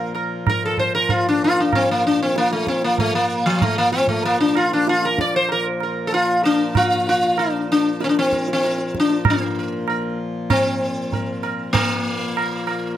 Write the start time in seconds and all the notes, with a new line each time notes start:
Already playing: A#2 F3 A#3 A#4
0.14 A#4, tabla na
0.47 A#4, tabla na, tabla ge
0.65 A4
0.78 C5, tabla ge
0.95 A#4
1.09 F4, tabla tin, tabla ge
1.29 D4
1.44 F4
1.60 D4
1.73 C4, tabla na, tabla ge
1.91 A#3
2.07 D4
2.22 C4
2.36 A#3, tabla te
2.51 A3, tabla te
2.67 C4, tabla ke
2.82 A#3, tabla te
2.98 A3, tabla tin, tabla ge
3.15 A#3
3.46 F3
3.62 A3, tabla na, tabla ge
3.78 A#3
3.92 C4, tabla te
4.07 A3, tabla ge
4.23 A#3, tabla tin
4.40 D4
4.55 F4, tabla na
4.73 D4
4.87 F4, tabla te
5.02 A#4, tabla te
5.18 D5, tabla ke
5.34 C5, tabla te
5.49 A#4, tabla tin
5.80 A#4, tabla na
6.07 A4
6.12 F4 A#4, tabla tin
6.43 D4 A#4
6.75 F4 A#4, tabla na, tabla ge
7.07 F4 A#4
7.37 D4 A#4, tabla na
7.72 D4
8.01 C4 A#4, tabla te
8.09 D4
8.17 C4, tabla te
8.32 A#4, tabla ke
8.48 tabla te
8.53 C4
8.64 A#4, tabla te
8.78 tabla te
8.95 tabla ke
9.00 D4
9.10 tabla te
9.25 A#2 F3, tabla na, tabla ge
9.30 A#3
9.59 A#4
9.88 A#4, tabla na
10.50 C4, tabla na, tabla ge
11.13 A#4, tabla tin, tabla ge
11.43 A#4, tabla na
11.73 A#3, tabla na, tabla ge
12.37 tabla na
12.67 A#4, tabla na